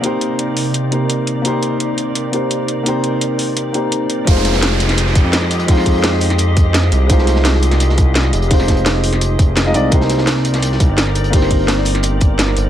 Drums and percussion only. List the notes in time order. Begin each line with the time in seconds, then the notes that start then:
0.04 closed hi-hat
0.21 closed hi-hat
0.39 closed hi-hat
0.57 open hi-hat
0.74 closed hi-hat
0.92 closed hi-hat
1.10 closed hi-hat
1.27 closed hi-hat
1.45 closed hi-hat
1.63 closed hi-hat
1.80 closed hi-hat
1.98 closed hi-hat
2.15 closed hi-hat
2.33 closed hi-hat
2.51 closed hi-hat
2.68 closed hi-hat
2.86 closed hi-hat
3.04 closed hi-hat
3.21 closed hi-hat
3.39 open hi-hat
3.57 closed hi-hat
3.74 closed hi-hat
3.92 closed hi-hat
4.10 closed hi-hat
4.27 kick, closed hi-hat
4.35 snare
4.45 snare, closed hi-hat
4.53 snare
4.62 snare, closed hi-hat
4.71 snare
4.80 closed hi-hat
4.89 snare, closed hi-hat
4.97 snare, closed hi-hat
5.07 snare
5.15 kick, closed hi-hat
5.33 snare, closed hi-hat
5.42 snare
5.51 closed hi-hat
5.59 closed hi-hat
5.68 kick, closed hi-hat, open hi-hat
5.77 snare
5.86 kick, closed hi-hat
6.03 snare, closed hi-hat
6.12 snare
6.21 closed hi-hat, open hi-hat
6.30 snare, closed hi-hat
6.38 closed hi-hat
6.57 kick, closed hi-hat
6.74 snare, closed hi-hat
6.83 snare
6.92 closed hi-hat
7.09 kick, closed hi-hat
7.18 snare
7.27 snare, closed hi-hat
7.36 snare
7.45 snare, closed hi-hat
7.55 snare
7.63 closed hi-hat
7.71 snare, closed hi-hat
7.80 snare, closed hi-hat
7.89 snare
7.97 kick, closed hi-hat
8.15 snare, closed hi-hat
8.24 snare
8.33 closed hi-hat
8.42 closed hi-hat
8.51 kick, closed hi-hat, open hi-hat
8.60 snare
8.68 kick, snare, closed hi-hat
8.77 closed hi-hat
8.86 snare, closed hi-hat
8.94 snare
9.04 closed hi-hat, open hi-hat
9.13 snare, closed hi-hat
9.21 closed hi-hat
9.39 kick, closed hi-hat
9.56 snare, closed hi-hat
9.65 snare
9.74 closed hi-hat
9.92 kick, closed hi-hat
10.01 snare
10.09 snare, closed hi-hat
10.18 snare
10.27 snare, closed hi-hat
10.36 snare
10.45 closed hi-hat
10.54 snare, closed hi-hat
10.62 snare, closed hi-hat
10.72 snare
10.80 kick, closed hi-hat
10.97 snare, closed hi-hat
11.07 snare
11.15 closed hi-hat
11.24 closed hi-hat
11.33 kick, closed hi-hat, open hi-hat
11.42 snare
11.51 kick, closed hi-hat
11.68 snare, closed hi-hat
11.77 snare
11.85 closed hi-hat, open hi-hat
11.95 snare, closed hi-hat
12.03 closed hi-hat
12.20 kick, closed hi-hat
12.39 snare, closed hi-hat
12.47 snare
12.57 closed hi-hat